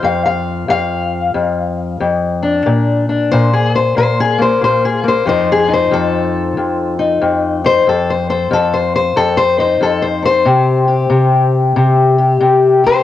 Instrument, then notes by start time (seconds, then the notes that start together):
steel-string acoustic guitar
Already playing: F4
0.03 F2 F5
0.26 F5
0.68 F2 F5
1.34 F2
2.00 F2
2.43 D4
2.66 A#2
3.09 D4
3.32 A#2 C5
3.54 G#4
3.76 C5
3.97 A#2 C5
4.20 G#4
4.39 A#3 C5
4.61 A#2 C5
4.85 G#4
5.04 A#3
5.08 C5
5.26 F2 F3 D#4 C5
5.52 G#4
5.68 D#4
5.73 C5
5.91 F2 A4
6.57 F2
6.99 D#4
7.21 F2
7.64 D#4 C5
7.87 F2 A4
8.10 C5
8.30 A4 C5
8.51 F2 A4
8.73 C5
8.95 C5
9.16 F2 A4
9.37 C5
9.58 D#4 C5
9.80 F2 A4
10.02 C5
10.23 A4 C5
10.45 C3 G4
10.88 G4
11.10 C3
11.76 C3
12.18 G4
12.41 C3
12.84 G4 C5